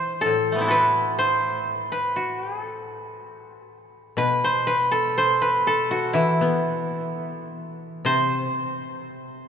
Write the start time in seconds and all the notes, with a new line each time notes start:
Already playing: E3 C5 E5
0.21 A4
0.26 A2
0.52 A3 B3
0.58 C4 E4
0.66 F#4 A4
0.71 B4
1.19 C5
1.92 B4
2.16 F#4
2.40 G4
2.62 A4
4.17 B2 B4
4.44 C5
4.67 B4
4.91 A4
5.18 C5
5.42 B4
5.67 A4
5.91 F#4
6.13 E3 E4
6.41 B3
8.05 C3 C5